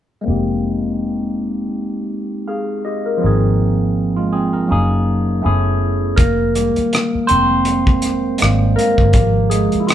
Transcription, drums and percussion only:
6.17 kick, closed hi-hat
6.55 closed hi-hat
6.76 closed hi-hat
6.93 cross-stick, closed hi-hat
7.29 closed hi-hat
7.65 closed hi-hat
7.87 kick
8.02 cross-stick, closed hi-hat
8.38 closed hi-hat
8.42 cross-stick
8.79 cross-stick, closed hi-hat
8.98 kick
9.13 kick, closed hi-hat
9.51 closed hi-hat
9.72 closed hi-hat
9.89 cross-stick, closed hi-hat

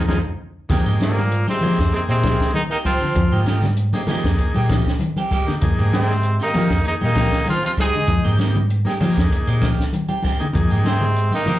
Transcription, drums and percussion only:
0.08 kick, snare, high conga
0.69 kick, snare, closed hi-hat, low conga
0.86 closed hi-hat
1.01 snare, closed hi-hat, high conga
1.17 snare, closed hi-hat
1.31 closed hi-hat
1.48 snare, closed hi-hat, high conga
1.63 open hi-hat, high conga, low conga
1.79 kick, snare
1.94 closed hi-hat
2.24 kick, snare, closed hi-hat, high conga
2.40 kick, snare
2.54 closed hi-hat, high conga
2.71 closed hi-hat
2.85 kick, closed hi-hat, high conga
3.01 closed hi-hat
3.15 kick, closed hi-hat, low conga
3.46 snare, closed hi-hat, high conga
3.62 snare, closed hi-hat, low conga
3.77 closed hi-hat
3.93 snare, closed hi-hat, high conga
4.07 snare, open hi-hat, high conga, low conga
4.24 kick, snare, closed hi-hat
4.39 kick, closed hi-hat
4.54 closed hi-hat, high conga
4.69 kick, snare, closed hi-hat, high conga
4.86 kick, snare, closed hi-hat
4.99 closed hi-hat, high conga
5.16 closed hi-hat, high conga
5.31 kick, open hi-hat, high conga
5.47 snare, closed hi-hat
5.61 kick, closed hi-hat, low conga
5.78 closed hi-hat
5.92 snare, closed hi-hat, high conga
6.08 snare, closed hi-hat
6.23 closed hi-hat
6.39 snare, closed hi-hat
6.54 snare, open hi-hat, high conga, low conga
6.70 kick, snare
6.85 closed hi-hat
7.01 high conga
7.15 kick, snare, closed hi-hat, high conga
7.32 kick, snare
7.46 snare, closed hi-hat, high conga
7.63 closed hi-hat
7.77 kick, closed hi-hat, high conga
7.93 closed hi-hat
8.07 kick, closed hi-hat, low conga
8.39 snare, closed hi-hat, high conga
8.55 closed hi-hat, low conga
8.70 closed hi-hat
8.85 snare, closed hi-hat, high conga
9.01 open hi-hat, high conga, low conga
9.17 kick, snare, closed hi-hat
9.32 kick, closed hi-hat
9.48 closed hi-hat
9.62 kick, snare, closed hi-hat, high conga
9.79 kick, snare, closed hi-hat
9.93 closed hi-hat, high conga
10.09 closed hi-hat, high conga
10.23 kick, snare, open hi-hat, high conga
10.41 closed hi-hat
10.53 kick, closed hi-hat, low conga
10.71 closed hi-hat
10.84 snare, closed hi-hat, high conga
11.01 closed hi-hat, low conga
11.16 closed hi-hat
11.31 snare, closed hi-hat, high conga
11.46 open hi-hat, high conga, low conga

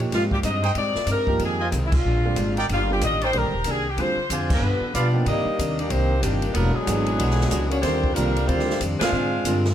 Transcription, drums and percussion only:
0.11 kick, snare, ride
0.31 kick
0.43 kick, hi-hat pedal, ride
0.64 ride
0.75 kick, ride
0.95 snare
1.07 kick, hi-hat pedal, ride
1.27 kick
1.39 kick, ride
1.72 kick, hi-hat pedal, ride
1.92 kick, crash
2.36 kick, hi-hat pedal, ride
2.57 ride
2.69 kick, ride
3.01 kick, hi-hat pedal, ride
3.21 ride
3.33 kick, ride
3.64 kick, hi-hat pedal, ride
3.98 kick, ride
4.30 kick, hi-hat pedal, ride
4.50 kick, crash
4.94 kick, hi-hat pedal, ride
5.26 kick, ride
5.59 kick, hi-hat pedal, ride
5.79 ride
5.90 kick, ride
6.23 kick, hi-hat pedal, ride
6.42 ride
6.55 kick, ride
6.87 kick, hi-hat pedal, ride
7.06 ride
7.19 kick, ride
7.31 snare
7.41 snare
7.51 kick, hi-hat pedal, ride
7.71 ride
7.83 kick, snare, ride
8.04 kick
8.16 kick, hi-hat pedal, ride
8.36 ride
8.48 kick, ride
8.60 snare
8.70 snare
8.81 kick, hi-hat pedal, ride
9.01 snare, ride
9.45 kick, hi-hat pedal, ride
9.65 snare

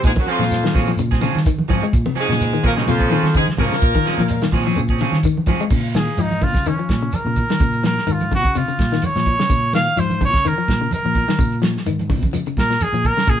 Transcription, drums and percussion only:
0.03 kick, closed hi-hat, shekere
0.16 kick, closed hi-hat, high conga
0.27 closed hi-hat, shekere
0.39 snare, closed hi-hat, low conga
0.51 snare, closed hi-hat, shekere
0.65 snare, closed hi-hat
0.74 kick, snare, open hi-hat, high conga, low conga, shekere
0.98 closed hi-hat, shekere
1.12 kick, snare, closed hi-hat
1.21 closed hi-hat, high conga, shekere
1.37 snare
1.45 kick, closed hi-hat, shekere
1.58 high conga
1.69 kick, closed hi-hat, low conga, shekere
1.83 closed hi-hat
1.93 kick, closed hi-hat, shekere
2.06 high conga
2.17 closed hi-hat, shekere
2.31 snare, high conga
2.41 closed hi-hat, shekere
2.54 closed hi-hat
2.64 kick, closed hi-hat, high conga, low conga, shekere
2.77 snare, closed hi-hat
2.87 closed hi-hat, high conga, shekere
3.01 kick, closed hi-hat
3.10 closed hi-hat, high conga, shekere
3.25 snare
3.35 kick, closed hi-hat, shekere
3.47 snare, high conga
3.57 kick, closed hi-hat, low conga, shekere
3.73 snare
3.82 kick, closed hi-hat, shekere
3.95 kick, closed hi-hat, high conga
4.06 snare, closed hi-hat, shekere
4.18 closed hi-hat, high conga, low conga
4.28 closed hi-hat, shekere
4.41 snare, closed hi-hat
4.51 kick, open hi-hat, high conga, low conga, shekere
4.75 closed hi-hat, shekere
4.88 kick, closed hi-hat
4.98 closed hi-hat, high conga, shekere
5.13 snare
5.23 kick, closed hi-hat, shekere
5.37 high conga
5.46 kick, closed hi-hat, high conga, low conga, shekere
5.60 closed hi-hat
5.70 kick, crash, high conga, shekere
5.84 shekere
5.94 snare, closed hi-hat, high conga, low conga, shekere
6.07 closed hi-hat, shekere
6.18 closed hi-hat, high conga, shekere
6.31 closed hi-hat, high conga, shekere
6.41 kick, open hi-hat, high conga, low conga, shekere
6.54 kick, snare, closed hi-hat, high conga, shekere
6.65 closed hi-hat, high conga, shekere
6.79 shekere
6.89 kick, snare, closed hi-hat, shekere
7.01 shekere
7.12 closed hi-hat, high conga, shekere
7.26 shekere
7.36 kick, closed hi-hat, low conga, shekere
7.49 snare, closed hi-hat, shekere
7.60 kick, closed hi-hat, high conga, shekere
7.73 closed hi-hat, shekere
7.83 snare, closed hi-hat, high conga, shekere
7.97 snare, shekere
8.07 closed hi-hat, high conga, shekere
8.20 closed hi-hat, high conga, shekere
8.31 kick, open hi-hat, high conga, low conga, shekere
8.45 kick, closed hi-hat, shekere
8.55 closed hi-hat, high conga, shekere
8.68 closed hi-hat, shekere
8.79 kick, snare, closed hi-hat, shekere
8.92 snare, closed hi-hat, shekere
9.02 closed hi-hat, high conga, shekere
9.16 snare, closed hi-hat, shekere
9.26 kick, closed hi-hat, low conga, shekere
9.39 snare, closed hi-hat, shekere
9.50 kick, closed hi-hat, shekere
9.64 shekere
9.73 snare, closed hi-hat, high conga, shekere
9.87 closed hi-hat, shekere
9.97 closed hi-hat, high conga, shekere
10.10 closed hi-hat, high conga, shekere
10.21 kick, open hi-hat, high conga, low conga, shekere
10.34 kick, snare, closed hi-hat, shekere
10.45 closed hi-hat, high conga, shekere
10.59 shekere
10.68 kick, snare, closed hi-hat, shekere
10.83 shekere
10.91 closed hi-hat, high conga, shekere
11.06 shekere
11.15 kick, closed hi-hat, low conga, shekere
11.28 snare, closed hi-hat, shekere
11.39 kick, closed hi-hat, high conga, shekere
11.52 closed hi-hat, shekere
11.62 snare, closed hi-hat, high conga, shekere
11.77 snare, shekere
11.86 closed hi-hat, high conga, shekere
11.99 closed hi-hat, high conga, shekere
12.10 kick, open hi-hat, high conga, low conga, shekere
12.23 kick, closed hi-hat, high conga, shekere
12.34 closed hi-hat, high conga, low conga, shekere
12.46 closed hi-hat, shekere
12.57 kick, snare, closed hi-hat, shekere
12.70 snare, closed hi-hat, shekere
12.81 closed hi-hat, high conga, shekere
12.94 closed hi-hat, shekere
13.04 kick, closed hi-hat, low conga, shekere
13.17 snare, closed hi-hat, shekere
13.27 kick, closed hi-hat, high conga, shekere

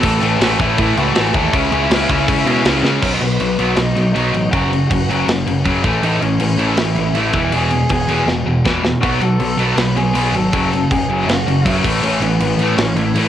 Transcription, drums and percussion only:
0.03 kick, crash
0.22 crash
0.41 snare, crash
0.59 kick, crash
0.78 kick, crash
0.98 crash
1.15 snare, crash
1.34 kick, crash
1.53 kick, crash
1.72 crash
1.91 snare, crash
2.10 kick, crash
2.28 kick, crash
2.47 crash
2.65 snare, crash
2.85 snare
3.02 kick, crash
3.21 crash
3.40 crash
3.59 crash
3.76 snare, crash
3.96 crash
4.16 crash
4.34 crash
4.53 kick, crash
4.73 crash
4.91 kick, crash
5.10 crash
5.28 snare, crash
5.47 crash
5.65 kick, crash
5.84 kick, crash
6.03 crash
6.22 crash
6.40 crash
6.59 crash
6.77 snare, crash
6.96 crash
7.15 crash
7.33 kick, crash
7.52 crash
7.70 crash
7.89 kick, crash
8.08 crash
8.28 snare
8.65 kick, snare
8.85 snare
9.03 kick, crash
9.21 crash
9.40 crash
9.59 crash
9.78 snare, crash
9.97 crash
10.15 crash
10.35 crash
10.54 kick, crash
10.73 crash
10.91 kick, crash
11.10 crash
11.29 snare, crash
11.48 crash
11.66 kick, crash
11.84 kick, crash
12.03 crash
12.22 crash
12.40 crash
12.59 crash
12.78 snare, crash
12.96 crash
13.15 crash

